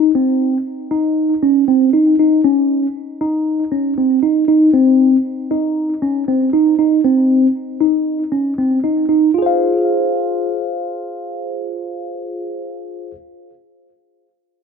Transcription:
tine electric piano
Already playing: D#4
0.15 C4
0.91 D#4
1.43 C#4
1.68 C4
1.93 D#4
2.19 D#4
2.44 C#4
3.21 D#4
3.72 C#4
3.98 C4
4.23 D#4
4.48 D#4
4.73 C4
5.51 D#4
6.02 C#4
6.28 C4
6.53 D#4
6.79 D#4
7.04 C4
7.81 D#4
8.32 C#4
8.58 C4
8.84 D#4
9.09 D#4
9.34 F4
9.38 G#4 C5
9.46 F5

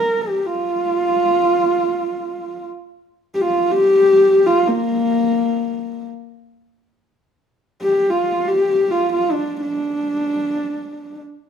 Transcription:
horsehead fiddle
Already playing: A#4
0.21 G4
0.43 F4 G4
3.34 G4
3.41 F4
3.72 G4
4.46 F4
4.67 A#3
7.82 G4
8.10 F4
8.48 G4
8.91 F4
9.13 F4
9.32 D4
9.61 D4

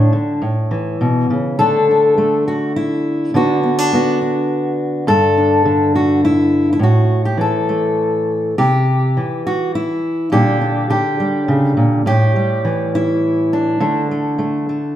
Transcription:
steel-string acoustic guitar
Already playing: A2 D3 D4
0.13 D3
0.42 A2
0.71 E3
1.01 B2
1.30 C#3
1.59 D3 A3 D4 A4
1.91 D4
2.18 A3
2.48 F#4
2.76 E4
3.34 D3 B3 D4 F#4
3.63 B3
3.78 D4
3.93 B3 F#4
4.22 D4
5.07 G2 A4
5.37 D4
5.65 D3
5.95 F#4
6.25 E4
6.73 E4
6.79 A2 F#4
7.25 G4
7.37 E3 A4
7.69 A3
8.58 C3 G4
9.17 E3
9.47 F#4
9.75 E4
10.32 A#2 D3 G3 D4 G4
10.61 D4
10.90 D3 G4
11.20 G3
11.48 C#3
11.77 A#2
12.06 A2 G4
12.36 G3
12.65 E3
12.95 E4
13.53 D4
13.80 D3 A3
14.11 A3
14.38 A3
14.69 A3

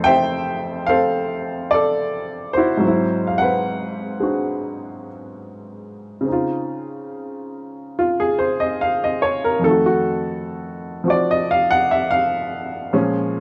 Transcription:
upright piano
Already playing: F2 E3 A3 C4 A4 C5
0.04 C5 E5 G5
0.87 A4 C5 F5
1.71 A4 D5
2.53 F#4 C5
2.58 E4
2.77 G#2 F#3
2.85 C4 E4
3.27 F5
3.38 B4 C5 F#5
4.20 G#3 C4 D4 F#4
6.21 C#3
6.25 C4 D#4
6.32 F4
7.99 F4
8.20 G#4
8.39 C5
8.60 D#5
8.81 F5
9.04 D#5
9.22 C#5
9.44 A#4
9.59 F2 D#3
9.64 A3 A4
9.71 F#4
9.86 F#4
11.04 F3 C4 F#4
11.10 D5
11.31 D#5
11.51 F5
11.71 F#5
11.91 E5
12.11 F5
12.93 A#2 F3 G#3 C#4

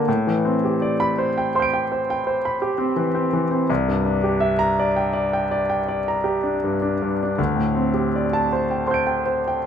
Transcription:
grand piano
0.08 A2
0.27 E3
0.45 C4
0.65 G4
0.82 D5
1.00 B5
1.18 C5
1.38 G5
1.55 C5 C6
1.60 G6 D7
1.74 G5
1.92 C5
2.10 G5
2.27 C5
2.45 B5
2.62 G4
2.78 C4
2.96 E3
3.15 C4
3.33 E3
3.51 C4
3.69 C2
3.88 G2
4.05 D4
4.24 G4
4.40 E5
4.59 A#5
4.79 D5
4.96 G5
5.13 D5
5.33 G5
5.51 D5
5.70 G5
5.88 D5
6.08 A#5
6.24 G4
6.43 D4
6.64 G2
6.82 D4
7.02 G2
7.23 D4
7.38 D2
7.56 A2
7.75 C4
7.94 G4
8.16 D5
8.33 A5
8.53 C5
8.71 G5
8.87 C5 C6 G6
8.94 D7
9.07 G5
9.26 C5
9.48 G5

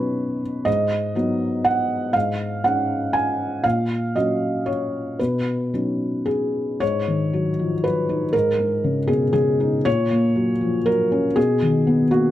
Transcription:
felt piano
Already playing: B2 F#3 C#4 D#4 B4 C#5
0.65 G#2 D#5
1.15 F#3 B3 D#4
1.65 F#5
2.13 G#2 F5
2.64 G#3 C#4 D#4 F#5
3.13 G#5
3.64 A#2 F5
4.16 F#3 C#4 F#4 D#5
4.66 C#5
5.19 B2 B4
5.74 F#3 C#4 D#4
6.26 G#4
6.80 G#2 C#5
7.08 D#3
7.33 F#3
7.59 F3
7.84 F#3 B4
8.09 D#4
8.33 G#2 A#4
8.59 G#3
8.84 C#3
9.07 B2 G#4
9.33 C#3 G#4
9.60 D#4
9.85 A#2 C#5
10.11 A#3
10.36 F#3
10.61 F3
10.86 F#3 A#4
11.12 C#4
11.36 B2 G#4
11.62 D#3
11.87 B3
12.11 A#3 F#4

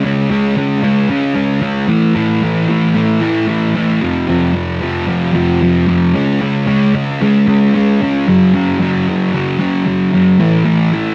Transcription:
distorted electric guitar
0.04 C#3 G#3 C#4
0.31 C#3 G#3 C#4
0.57 C#3 G#3 C#4
0.83 C#3 G#3 C#4
1.10 C#3 G#3 C#4
1.35 C#3 G#3 C#4
1.61 C#3 G#3 C#4
1.88 A2 E3 A3
2.15 A2 E3 A3
2.42 A2 E3 A3
2.69 A2 E3 A3
2.95 A2 E3 A3
3.21 A2 E3 A3
3.48 A2 E3 A3
3.76 A2 E3 A3
4.01 F2 C3 F3
4.28 F2 C3 F3
4.54 F2 C3 F3
4.81 F2 C3 F3
5.07 F2 C3 F3
5.33 F2 C3 F3
5.62 F2 C3 F3
5.87 F2 C3 F3
6.15 C#3 G#3 C#4
6.42 C#3 G#3 C#4
6.67 C#3 G#3 C#4
6.95 C#3 G#3 C#4
7.21 C#3 G#3 C#4
7.47 C#3 G#3 C#4
7.74 C#3 G#3 C#4
8.01 C#3 G#3 C#4
8.27 F#2 C#3 F#3
8.55 F#2 C#3 F#3
8.80 F#2 C#3 F#3
9.08 F#2 C#3 F#3
9.34 F#2 C#3 F#3
9.59 F#2 C#3 F#3
9.86 F#2 C#3 F#3
10.12 F#2 C#3 F#3
10.39 A2 E3 A3
10.65 A2 E3 A3
10.93 A2 E3 A3

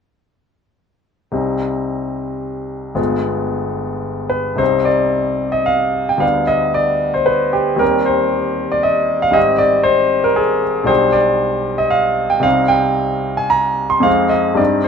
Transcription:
grand piano
1.32 C2 G3 C4 D#4
2.95 G1 G#3 B3 F4
4.30 B4
4.56 C2 G3 C4 D#4 C5
4.85 D5
5.52 D#5
5.66 F5
6.09 G5
6.18 D2 G3 B3 D4 F5
6.47 D#5
6.74 D5
7.14 C5
7.26 B4
7.53 G4
7.76 D#2 G3 C4 G4 A#4
8.06 C5
8.72 D5
8.83 D#5
9.22 F5
9.31 G#1 G3 C4 G4 D#5
9.58 D5
9.83 C5
10.24 A#4
10.36 G#4
10.84 B1 G3 D4 G4 C5
11.12 D5
11.78 D#5
11.91 F5
12.30 G5
12.40 C2 G3 C4 D#4 F5
12.68 G5
13.37 G#5
13.50 A#5
13.90 C6
14.00 F2 G#3 C4 D#4 F5
14.29 D#5
14.54 G2 G3 C4 D#4 D5
14.84 C5

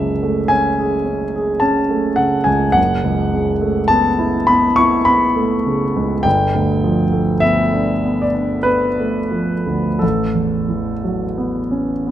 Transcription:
grand piano
Already playing: F#1 C#2 C#3 E5
0.23 A3
0.48 C#4 G#5
0.79 G#4
1.05 C#4
1.35 G#4
1.60 C#4 A5
1.90 A3
2.16 C#3 F#5
2.44 C#2 G#5
2.72 F#1 F#5
3.04 C#2
3.34 C#3
3.61 A3
3.88 B3 A5
4.19 E4
4.47 B3 B5
4.76 E4 C#6
5.05 B3 B5
5.36 A3
5.66 C#3
5.96 C#2
6.23 G1 G5
6.55 D2
6.84 F3
7.13 A3
7.40 B3 E5
7.73 D4
8.05 B3
8.22 D5
8.34 D4
8.63 B3 B4
9.00 A3
9.31 F3
9.67 D2
9.99 A1 A4
10.35 E2
10.68 E3
11.04 F#3
11.38 B3
11.71 C#4
12.07 B3

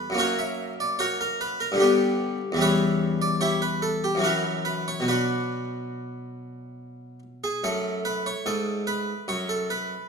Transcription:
harpsichord
Already playing: E2 G3 B4
0.10 F#2 F#3
0.15 A#3 C#4 C#5
0.19 F#4 A#4
0.39 E5
0.80 D5
0.99 F#4 A#4 C#5
1.21 A#4
1.41 B4
1.60 A#4
1.72 G2 D3
1.76 G3 G4
1.81 B3 D4
2.52 E2 E3
2.57 G3 C#4
2.61 B4 C#5 E5
3.22 D5
3.41 E4 G4 C#5
3.62 B4
3.82 A4
4.04 G4
4.15 F#2 E3 F#3
4.22 C#4 E4 F#4 A#4
4.65 B4
4.88 C#5
5.00 B2 F#3
5.08 D4 F#4 B4
7.44 G#4
7.64 F#2 A3 A4
8.05 B4
8.26 C#5
8.46 G#2 A4
8.87 B4
9.28 F#2 C#5
9.49 A4
9.70 B4

